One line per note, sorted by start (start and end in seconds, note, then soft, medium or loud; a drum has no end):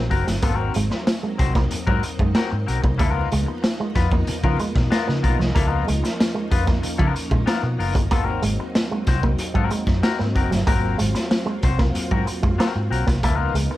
0.00 2.95 F#3 medium
0.00 13.19 A#3 medium
0.00 2.95 C4 medium
0.00 10.63 D#4 medium
0.10 0.24 F#1 medium
0.10 0.27 C4 medium
0.10 0.26 F#4 medium
0.10 0.26 A#4 medium
0.10 muted clean electric guitar stroke soft
0.10 kick medium
0.10 closed hi-hat medium
0.27 0.40 G1 medium
0.27 0.39 F#3 medium
0.27 muted clean electric guitar stroke soft
0.27 snare soft
0.27 closed hi-hat medium
0.42 0.69 G#1 medium
0.42 0.54 A#3 medium
0.42 0.55 B3 medium
0.42 0.55 F4 medium
0.42 0.56 A4 loud
0.42 kick loud
0.42 closed hi-hat medium
0.55 0.72 C4 medium
0.55 0.72 F#4 medium
0.55 0.73 A#4 loud
0.74 0.89 G#1 medium
0.74 0.87 G#3 medium
0.74 closed hi-hat medium
0.90 muted clean electric guitar stroke soft
0.90 snare soft
1.07 muted clean electric guitar stroke soft
1.07 snare loud
1.07 closed hi-hat medium
1.23 1.35 G#3 medium
1.38 1.65 C2 loud
1.38 1.55 C4 medium
1.38 1.53 F#4 medium
1.38 1.53 C5 medium
1.38 muted clean electric guitar stroke soft
1.38 kick loud
1.38 closed hi-hat medium
1.54 1.67 A#3 medium
1.54 muted clean electric guitar stroke soft
1.54 kick loud
1.54 snare soft
1.71 muted clean electric guitar stroke soft
1.71 muted fingered electric bass stroke soft
1.71 closed hi-hat medium
1.87 2.00 G#2 loud
1.87 1.99 F#3 medium
1.87 2.03 C4 medium
1.87 2.03 F#4 medium
1.87 2.03 A#4 medium
1.87 kick medium
2.03 muted clean electric guitar stroke soft
2.03 closed hi-hat medium
2.19 2.32 F#2 medium
2.19 2.31 G#3 medium
2.19 muted clean electric guitar stroke soft
2.19 kick medium
2.35 2.47 A#3 medium
2.35 2.56 C4 medium
2.35 2.51 F#4 medium
2.35 2.49 A#4 medium
2.35 snare loud
2.35 closed hi-hat medium
2.51 2.65 G#2 medium
2.51 muted clean electric guitar stroke soft
2.67 2.81 B1 medium
2.67 2.83 C4 medium
2.67 2.82 F#4 medium
2.67 2.81 A#4 medium
2.67 closed hi-hat medium
2.82 3.00 C2 medium
2.82 2.95 A#3 medium
2.82 muted clean electric guitar stroke soft
2.82 kick medium
2.98 3.26 C#2 medium
2.98 8.08 F3 medium
2.98 3.11 A#3 medium
2.98 5.53 B3 medium
2.98 3.11 E4 medium
2.98 3.11 A4 medium
2.98 kick loud
2.98 closed hi-hat medium
3.11 3.28 B3 medium
3.11 3.28 F4 medium
3.11 3.28 A#4 medium
3.32 3.45 C#2 medium
3.32 3.43 G#3 medium
3.32 closed hi-hat medium
3.46 muted clean electric guitar stroke soft
3.62 muted clean electric guitar stroke soft
3.62 snare loud
3.62 closed hi-hat medium
3.80 3.91 G#3 medium
3.95 4.22 F2 medium
3.95 4.12 B3 medium
3.95 4.11 F4 medium
3.95 4.11 B4 medium
3.95 muted clean electric guitar stroke soft
3.95 kick loud
3.95 snare soft
3.95 closed hi-hat medium
4.11 4.23 A#3 medium
4.11 muted clean electric guitar stroke soft
4.11 kick medium
4.27 muted clean electric guitar stroke soft
4.27 muted fingered electric bass stroke soft
4.27 closed hi-hat medium
4.44 4.57 C#3 loud
4.44 4.56 F3 medium
4.44 4.57 B3 medium
4.44 4.58 F4 medium
4.44 4.58 A#4 medium
4.44 kick medium
4.58 4.71 G#3 medium
4.58 muted clean electric guitar stroke soft
4.58 closed hi-hat medium
4.75 4.88 B2 medium
4.75 muted clean electric guitar stroke soft
4.75 kick loud
4.75 snare soft
4.91 5.12 B3 medium
4.91 5.07 F4 medium
4.91 5.06 A#4 medium
4.91 snare medium
4.91 closed hi-hat medium
5.07 5.21 C#3 medium
5.07 5.19 A#3 medium
5.07 muted clean electric guitar stroke soft
5.07 snare soft
5.23 5.37 B1 medium
5.23 5.40 B3 medium
5.23 5.39 F4 medium
5.23 5.38 A#4 medium
5.23 muted clean electric guitar stroke soft
5.23 kick medium
5.23 closed hi-hat medium
5.39 5.53 C2 medium
5.39 5.50 F3 medium
5.39 muted clean electric guitar stroke soft
5.39 snare soft
5.55 5.82 C#2 medium
5.55 5.66 A#3 medium
5.55 5.67 A#3 medium
5.55 8.09 C#4 medium
5.55 5.67 E4 medium
5.55 5.68 A4 medium
5.55 kick loud
5.55 closed hi-hat loud
5.67 5.85 B3 medium
5.67 5.85 F4 medium
5.67 5.85 A#4 medium
5.87 6.01 C#2 medium
5.87 5.99 G#3 medium
5.87 closed hi-hat medium
6.04 muted clean electric guitar stroke medium
6.04 snare soft
6.04 closed hi-hat medium
6.20 muted clean electric guitar stroke soft
6.20 snare loud
6.20 closed hi-hat medium
6.35 6.46 G#3 medium
6.51 6.78 F2 loud
6.51 6.68 B3 medium
6.51 6.66 F4 medium
6.51 6.66 B4 medium
6.51 muted clean electric guitar stroke soft
6.51 kick loud
6.51 closed hi-hat medium
6.67 6.78 A#3 medium
6.67 muted clean electric guitar stroke soft
6.67 kick medium
6.67 snare soft
6.82 muted clean electric guitar stroke soft
6.82 muted fingered electric bass stroke soft
6.82 closed hi-hat medium
6.98 7.13 C#3 medium
6.98 7.10 F3 medium
6.98 7.13 B3 medium
6.98 7.13 F4 medium
6.98 7.13 A#4 medium
6.98 kick medium
7.14 muted clean electric guitar stroke soft
7.14 closed hi-hat medium
7.30 7.44 A#2 medium
7.30 7.43 G#3 medium
7.30 muted clean electric guitar stroke soft
7.30 kick medium
7.46 7.59 A#3 medium
7.46 7.68 B3 medium
7.46 7.62 F4 medium
7.46 7.62 A#4 medium
7.46 snare loud
7.46 closed hi-hat medium
7.63 7.76 B2 medium
7.63 muted clean electric guitar stroke soft
7.78 7.95 F#1 medium
7.78 7.95 B3 medium
7.78 7.94 F4 medium
7.78 7.94 A#4 medium
7.78 open hi-hat medium
7.95 8.11 G1 medium
7.95 8.06 A#3 medium
7.95 muted clean electric guitar stroke soft
7.95 kick medium
7.95 closed hi-hat medium
8.10 8.38 G#1 medium
8.10 13.19 F#3 medium
8.10 8.23 A#3 medium
8.10 8.24 B3 medium
8.10 13.19 C4 medium
8.10 8.24 F4 medium
8.10 8.24 A4 medium
8.10 kick loud
8.10 closed hi-hat medium
8.24 8.41 C4 medium
8.24 8.41 F#4 medium
8.24 8.41 A#4 medium
8.42 8.56 G#1 medium
8.42 8.54 G#3 medium
8.42 closed hi-hat medium
8.60 muted clean electric guitar stroke medium
8.75 muted clean electric guitar stroke soft
8.75 snare loud
8.75 closed hi-hat medium
8.91 9.03 G#3 medium
9.06 9.34 C2 loud
9.06 9.24 C4 medium
9.06 9.23 F#4 medium
9.06 9.24 C5 medium
9.06 muted clean electric guitar stroke soft
9.06 kick loud
9.06 snare soft
9.06 closed hi-hat medium
9.23 9.35 A#3 medium
9.23 muted clean electric guitar stroke soft
9.23 kick medium
9.38 muted fingered electric bass stroke soft
9.38 muted clean electric guitar stroke soft
9.38 closed hi-hat medium
9.54 9.69 G#2 loud
9.54 9.66 F#3 medium
9.54 9.70 C4 medium
9.54 9.70 F#4 medium
9.54 9.70 A#4 medium
9.54 kick medium
9.70 9.83 G#3 medium
9.70 closed hi-hat medium
9.87 10.00 F#2 medium
9.87 muted clean electric guitar stroke soft
9.87 kick medium
9.87 snare soft
10.03 10.24 C4 medium
10.03 10.18 F#4 medium
10.03 10.17 A#4 medium
10.03 snare loud
10.03 closed hi-hat medium
10.19 10.33 G#2 medium
10.19 10.31 A#3 medium
10.19 muted clean electric guitar stroke soft
10.19 snare soft
10.35 10.49 F#1 medium
10.35 10.52 C4 medium
10.35 10.51 F#4 medium
10.35 10.50 A#4 medium
10.35 muted clean electric guitar stroke soft
10.35 kick medium
10.35 closed hi-hat medium
10.51 10.65 G1 medium
10.51 10.63 F#3 medium
10.51 muted clean electric guitar stroke soft
10.51 snare soft
10.51 closed hi-hat medium
10.66 10.94 G#1 medium
10.66 10.78 A#3 medium
10.66 10.97 C4 medium
10.66 13.20 F4 loud
10.66 10.97 F#4 medium
10.66 10.97 A#4 medium
10.66 kick loud
10.66 closed hi-hat medium
10.98 11.13 G#1 medium
10.98 11.10 G#3 medium
10.98 closed hi-hat medium
11.15 muted clean electric guitar stroke soft
11.15 snare soft
11.15 closed hi-hat medium
11.31 muted clean electric guitar stroke soft
11.31 snare loud
11.31 closed hi-hat medium
11.46 11.58 G#3 medium
11.63 11.90 C2 medium
11.63 11.80 C4 medium
11.63 11.80 F#4 medium
11.63 11.80 C5 medium
11.63 muted clean electric guitar stroke medium
11.63 kick loud
11.63 closed hi-hat medium
11.79 11.90 A#3 medium
11.79 muted clean electric guitar stroke medium
11.79 kick medium
11.79 snare soft
11.95 muted clean electric guitar stroke soft
11.95 muted fingered electric bass stroke medium
11.95 closed hi-hat medium
12.11 12.25 G#2 loud
12.11 12.23 F#3 medium
12.11 12.26 C4 medium
12.11 12.26 F#4 medium
12.11 12.27 A#4 medium
12.11 kick medium
12.27 muted clean electric guitar stroke soft
12.27 closed hi-hat medium
12.43 12.57 F#2 medium
12.43 12.54 G#3 medium
12.43 muted clean electric guitar stroke soft
12.43 kick medium
12.58 12.71 A#3 medium
12.58 12.80 C4 medium
12.58 12.74 F#4 medium
12.58 12.73 A#4 medium
12.58 snare loud
12.58 closed hi-hat medium
12.74 12.89 G#2 medium
12.74 muted clean electric guitar stroke soft
12.90 13.04 B1 medium
12.90 13.08 C4 medium
12.90 13.07 F#4 medium
12.90 13.06 A#4 medium
12.90 closed hi-hat medium
13.07 13.24 C2 medium
13.07 13.18 A#3 medium
13.07 muted clean electric guitar stroke soft
13.07 kick medium
13.07 snare soft
13.07 closed hi-hat medium
13.22 13.50 C#2 loud
13.22 13.77 F3 medium
13.22 13.77 A#3 medium
13.22 13.35 A#3 medium
13.22 13.77 B3 medium
13.22 13.77 D#4 loud
13.22 13.36 E4 medium
13.22 13.36 A4 medium
13.22 kick loud
13.22 closed hi-hat medium
13.35 13.53 B3 medium
13.35 13.53 F4 medium
13.35 13.53 A#4 medium
13.54 13.68 C#2 medium
13.54 13.67 G#3 medium
13.54 closed hi-hat medium
13.71 muted clean electric guitar stroke soft